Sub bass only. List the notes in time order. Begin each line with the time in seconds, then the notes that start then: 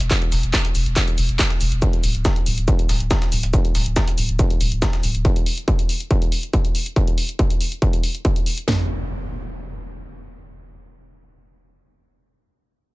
0.00 E1
0.32 E1
0.43 E1
0.75 E1
0.86 E1
1.18 E1
1.29 E1
1.61 E1
1.72 E1
2.04 D1
2.15 D1
2.46 D1
2.58 D1
2.89 D1
3.00 D1
3.32 D1
3.43 D1
3.75 D1
3.86 D1
4.18 D1
4.29 D1
4.61 D1
4.72 D1
5.03 D1
5.15 D1